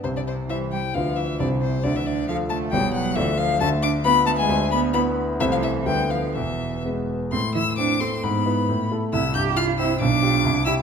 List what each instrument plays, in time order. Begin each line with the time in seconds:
0.04 grand piano C2 C3, cello C3, violin C5
0.15 cello D3, violin D5
0.26 cello C3, violin C5
0.48 cello E3, grand piano G3 E4 C5, violin E5
0.72 cello G3, violin G5
0.94 grand piano D2 D3 F3 F4 B4, cello F3, violin F5
1.16 cello E3, violin E5
1.40 grand piano C2 C3 G3 E4 C5, cello D3, violin D5
1.61 cello C3, violin C5
1.83 grand piano D2 D3, cello D3, violin D5
1.95 cello E3, violin E5
2.06 cello D3, violin D5
2.28 cello F3, grand piano F3 F4 A4, violin F5
2.50 cello A3, violin A5
2.71 grand piano E1 E2 G3 E4 C#5, cello G3, violin G5
2.93 cello F#3, violin F#5
3.16 grand piano D2 D3 A3 F4 D5, cello E3, violin E5
3.37 cello F3, violin F5
3.60 grand piano D2 D3, cello A3, violin A5
3.83 cello D4, violin D6
4.04 grand piano B3 F4 B4, cello B3, violin B5
4.26 cello A3, violin A5
4.37 cello G#3, violin G#5
4.49 grand piano D2 D3
4.71 cello B3, violin B5
4.93 grand piano B3 E4 B4, cello B3, violin B5
5.40 grand piano C2 C3 A3 E4 C5, cello E3, violin E5
5.51 cello F3, violin F5
5.62 cello E3, violin E5
5.86 grand piano D2 D3 A3 B3 B4, cello G3, violin G5
6.10 cello F3, violin F5
6.35 grand piano E1 E2, cello E3, violin E5
6.85 grand piano G#3 B3 B4
7.32 grand piano A2, cello C4, violin C6
7.55 grand piano E3, cello E4, violin E6
7.78 grand piano C4, cello D4, violin D6
8.01 grand piano A3, cello C4, violin C6
8.23 grand piano G#2, cello B3, violin B5
8.46 grand piano E4 B4
8.69 grand piano A2
8.91 grand piano E4 A4
9.13 grand piano C2, cello E4, violin E6
9.35 grand piano G2, cello G4, violin G6
9.57 grand piano E4, cello F4, violin F6
9.78 grand piano C4, cello E4, violin E6
10.00 grand piano B1, cello D4, violin D6
10.23 grand piano F4 G4
10.45 grand piano C2
10.65 cello E4, grand piano E4 G4, violin E6